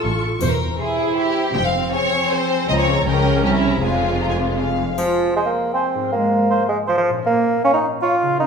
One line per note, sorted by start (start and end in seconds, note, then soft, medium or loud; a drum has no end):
0.00 0.33 A1 soft
0.00 0.42 A2 soft
0.00 0.34 A2 soft
0.00 0.20 F4 soft
0.00 0.21 A4 medium
0.00 0.41 C#6 soft
0.22 1.57 E4 soft
0.22 1.57 E5 soft
0.40 0.71 E1 medium
0.40 0.72 E2 medium
0.40 1.57 E3 soft
0.40 0.50 C5 medium
0.40 triangle soft
0.51 0.80 A#4 medium
0.60 1.73 C4 soft
0.79 1.52 E4 soft
0.79 1.16 G4 soft
0.79 1.17 G#4 medium
0.79 1.08 C6 soft
0.98 1.35 C5 soft
1.17 1.54 G4 medium
1.17 1.57 G4 soft
1.17 1.46 C6 soft
1.36 2.10 C5 soft
1.54 1.86 F1 medium
1.54 1.86 F2 medium
1.54 3.46 F3 soft
1.54 3.04 C4 soft
1.54 1.64 G5 medium
1.65 1.93 F5 medium
1.74 2.70 C4 soft
1.93 2.30 G#4 soft
1.93 2.30 C#5 medium
1.93 2.22 G#5 soft
2.12 2.49 C5 soft
2.31 2.70 G#4 soft
2.31 2.69 C5 medium
2.31 2.59 G#5 medium
2.50 2.70 C5 soft
2.68 3.04 C#2 medium
2.68 3.05 C#3 medium
2.68 2.72 D#5 medium
2.68 3.04 A#5 soft
2.79 3.06 C#5 medium
2.87 3.46 F4 soft
2.87 3.24 C#5 soft
3.06 3.44 C#2 soft
3.06 3.44 C#2 medium
3.06 3.46 C#3 medium
3.06 3.82 C#4 medium
3.06 3.44 A#4 medium
3.06 3.45 G5 soft
3.24 3.62 G4 soft
3.24 3.62 C#5 soft
3.43 3.83 C2 soft
3.43 3.84 C3 soft
3.43 3.54 G4 medium
3.43 3.82 A#5 soft
3.54 3.82 E4 medium
3.63 3.84 G4 soft
3.63 3.84 C#5 soft
3.82 4.77 F1 soft
3.82 4.77 F2 soft
3.82 4.78 F3 soft
3.82 4.77 G#3 soft
3.82 4.59 F4 medium
3.82 4.18 G#5 soft
4.02 4.88 F4 soft
4.21 4.92 C5 soft
4.21 4.25 A#5 soft
4.29 4.37 G#5 soft
4.40 4.78 G#4 soft
4.58 4.97 F5 soft
4.58 8.41 F5 soft
4.79 8.32 F3 soft
4.79 7.28 G#4 soft
4.84 7.21 G#3 soft
4.89 6.03 F4 soft
4.93 6.07 C5 soft
4.98 5.34 F3 medium
4.98 5.30 F4 medium
4.98 triangle soft
5.36 5.41 G#3 medium
5.36 5.50 C5 soft
5.36 5.43 G#5 soft
5.46 5.73 A#3 medium
5.73 6.11 C4 medium
5.73 5.88 C5 soft
5.73 5.80 G#5 soft
5.95 7.19 G#2 soft
5.99 7.21 C4 soft
6.04 7.17 F4 soft
6.08 6.44 G#3 medium
6.08 7.26 C5 soft
6.12 6.68 A#3 medium
6.50 6.64 C5 soft
6.50 6.57 F5 soft
6.69 6.78 G#3 medium
6.87 6.93 F3 medium
6.87 7.01 C5 soft
6.87 6.95 F5 soft
6.98 7.11 F3 medium
7.09 8.33 A#2 soft
7.13 8.47 C#4 soft
7.18 8.30 F4 soft
7.23 7.64 A#3 medium
7.23 7.58 A#3 medium
7.23 8.35 A#4 soft
7.64 7.73 C#4 medium
7.64 7.79 C#5 soft
7.64 7.71 F5 soft
7.74 7.87 D#4 medium
8.02 8.39 F4 medium
8.02 8.16 C#5 soft
8.02 8.10 F5 medium
8.22 8.47 C#3 soft
8.27 8.47 A#3 soft
8.31 8.47 F4 soft
8.36 8.47 D#4 medium
8.36 8.47 A#4 soft
8.40 8.47 C#4 medium